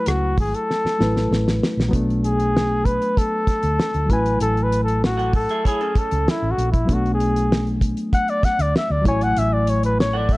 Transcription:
Already playing: F#3 A3 E4 G#5
0.06 C#2 F#4, cross-stick, closed hi-hat
0.37 G#1 G#4, kick, open hi-hat
0.54 A4, closed hi-hat
0.71 snare
0.85 muted fingered electric bass stroke, snare
0.98 A1 F#3 A3 E4, snare
1.03 B4
1.17 snare
1.31 A1, snare
1.48 snare
1.63 snare
1.77 A#1, snare
1.89 F#3 B3
1.93 B1 A3 D4, kick, closed hi-hat
2.10 closed hi-hat
2.24 G#4, closed hi-hat
2.40 closed hi-hat
2.57 snare
2.85 B4, kick, closed hi-hat
3.02 closed hi-hat
3.17 A4, kick, closed hi-hat
3.47 muted fingered electric bass stroke, kick, snare, closed hi-hat
3.63 D2, closed hi-hat
3.80 snare
3.94 D2, closed hi-hat
4.06 F#3 A3, kick
4.10 A1 E4 B4 G#5, closed hi-hat
4.26 closed hi-hat
4.40 A1 A4, closed hi-hat
4.57 closed hi-hat
4.63 B4
4.72 closed hi-hat
4.84 A4, closed hi-hat
5.04 F#4, snare
5.17 A4 F#5, closed hi-hat
5.33 A4, kick, open hi-hat
5.49 G#4 E5, closed hi-hat
5.65 E4 G#4 C#5, kick, closed hi-hat
5.81 C#4 A4, closed hi-hat
5.95 A4, muted fingered electric bass stroke, kick, closed hi-hat
6.11 C#2, closed hi-hat
6.28 E4, snare
6.42 A1
6.51 F#4
6.58 A#1, closed hi-hat
6.72 E4, kick, closed hi-hat
6.85 B1 F#3 B3, kick, closed hi-hat
6.90 A3 D4 F#4
7.06 closed hi-hat
7.14 G#4
7.20 closed hi-hat
7.36 closed hi-hat
7.52 snare
7.67 closed hi-hat
7.81 kick, closed hi-hat
7.97 closed hi-hat
8.13 F#5, kick, closed hi-hat
8.28 D5, closed hi-hat
8.43 F#5, muted fingered electric bass stroke, kick, snare, closed hi-hat
8.59 D2 D5, closed hi-hat
8.76 E5, snare
8.90 D2 D5
9.01 F#3 A3
9.05 A1 E4 C#5 G#5, kick, closed hi-hat
9.21 F#5, closed hi-hat
9.37 A1 E5, closed hi-hat
9.54 D5
9.67 C#5, closed hi-hat
9.83 B4, closed hi-hat
10.00 C#5, snare
10.13 A4 D5 F#5
10.29 E5, kick, open hi-hat

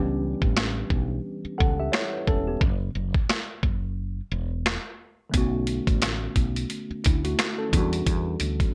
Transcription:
Already playing: C#2 E3 G3 B3 C#4 D4 G4 B4
0.42 A1, kick
0.57 snare
0.90 B1, kick
1.45 muted fretless electric bass stroke
1.58 C#2 A4 F#5, kick
1.80 G4 E5
1.92 E4 C#5, snare
2.13 B4
2.27 E1 C#4 A4, kick
2.47 B3 G4
2.61 F#1, kick
2.95 F#1
3.14 kick
3.30 snare
3.63 F#1, kick
4.32 E1
4.66 snare
5.30 D3 A3 B3
5.34 B1 C#4 F#4, kick, closed hi-hat
5.67 closed hi-hat
5.87 A1, kick, closed hi-hat
6.02 snare, closed hi-hat
6.36 B1, kick, closed hi-hat
6.56 closed hi-hat
6.70 closed hi-hat
6.91 muted fretless electric bass stroke
7.04 D2 E4, kick, closed hi-hat
7.25 A3 F#4, closed hi-hat
7.39 snare, closed hi-hat
7.58 C#4 A4
7.69 E2 E3 F#3, kick
7.73 B3 D4 F#4, closed hi-hat
7.78 G3
7.93 closed hi-hat
8.06 E2, kick, closed hi-hat
8.40 D2, closed hi-hat
8.60 kick, closed hi-hat

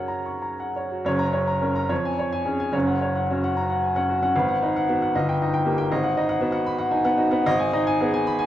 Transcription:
Already playing: F#2 C#3 F#3 F#4 A#4 C#5 F#5
0.08 A#5
0.26 C#6
0.42 A#5
0.60 F#5
0.76 C#5
0.91 F#4
1.05 F#1 F#2 C#5
1.19 A#5
1.33 C#5
1.47 A#5
1.62 C#4 A#4
1.75 A#5
1.89 F2 C#5
2.05 G#5
2.19 C#5
2.33 G#5
2.45 C#4 G#4
2.60 G#5
2.72 F#1 F#2 C#5
2.87 F#5
3.02 C#5
3.16 F#5
3.31 C#4 F#4
3.44 F#5
3.57 A#5
3.70 F#5
3.84 G#5
3.96 C#4 F#5
4.09 F#4
4.22 C#4 F#5
4.36 G#1 B4
4.48 F#5
4.62 D#4 B4
4.76 F#5
4.89 B3 F#4
5.02 F#5
5.15 G1 D#5
5.29 G5
5.42 D#4 D#5
5.54 G5
5.65 A#3 G4
5.78 G5
5.92 G#1 D#5
6.04 F#5
6.17 D#4 D#5
6.29 F#5
6.41 B3 F#4
6.52 F#5
6.66 B5
6.79 F#5
6.91 D#4 G#5
7.04 B3 F#5
7.17 D#4 F#4
7.31 B3 F#5
7.46 G#1 D#5
7.59 G#5
7.73 D#4 D#5
7.87 G#5
8.01 B3 G#4
8.14 G#5
8.27 B5
8.39 G#5

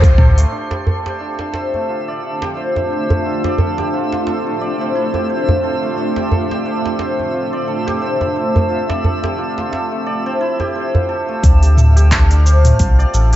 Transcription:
Already playing: D2 A3 C4 D4 G4 A4 C5 D5
0.02 F4, kick, open hi-hat, djembe bass, shaker
0.18 A4, kick, mid tom
0.38 A3, open hi-hat, shaker
0.52 A3 C4 D4 F4 C5 E5
0.71 G4, djembe slap, djembe tone
0.86 A4, djembe bass
1.06 G4, djembe slap
1.20 D4
1.39 D4, djembe slap
1.53 C5, djembe slap
1.74 A3, djembe tone
1.89 F4
2.08 D5
2.23 A4
2.42 G4, djembe slap
2.57 C5
2.76 D4, djembe tone
2.92 C5
3.10 A3, djembe tone, djembe bass
3.26 F4
3.44 D5, djembe slap, djembe tone
3.58 A4, djembe bass
3.78 G4, djembe slap, djembe tone
3.94 F4
4.12 F4, djembe slap
4.27 A4, djembe slap
4.47 A3
4.61 D5
4.81 C4
4.95 E4
5.14 G4, djembe tone
5.30 C5
5.49 F4, djembe bass
5.64 A4
5.83 A3
5.98 D4
6.16 G4, djembe slap, djembe tone
6.32 A4, djembe bass
6.51 G4, djembe slap
6.66 D4
6.85 D4, djembe slap
6.99 C5, djembe slap
7.19 A3, djembe tone
7.34 F4
7.53 D5
7.68 A4
7.87 G4, djembe slap
8.02 C5
8.21 D4, djembe tone
8.36 C5
8.55 A3, djembe tone, djembe bass
8.70 F4
8.89 D5, djembe slap, djembe tone
9.04 A4, djembe bass
9.24 G4, djembe slap, djembe tone
9.38 F4
9.58 F4, djembe slap
9.72 A4, djembe slap
9.92 A3
10.07 D5
10.26 C4
10.41 E4
10.60 G4, djembe tone
10.75 C5
10.94 F4, djembe bass
11.09 A4
11.29 A3
11.43 D2 D4 F5, kick, open hi-hat, shaker
11.62 G4, open hi-hat, shaker
11.77 A4, mid tom, shaker
11.96 G4, open hi-hat, shaker
12.11 D4, kick, clap, open hi-hat, shaker
12.31 D4, open hi-hat, shaker
12.45 C5, shaker
12.65 A3, mid tom, open hi-hat, shaker
12.79 C2 F4, kick, open hi-hat, shaker
12.99 D5, shaker
13.14 A1 A4, shaker
13.33 G4, open hi-hat

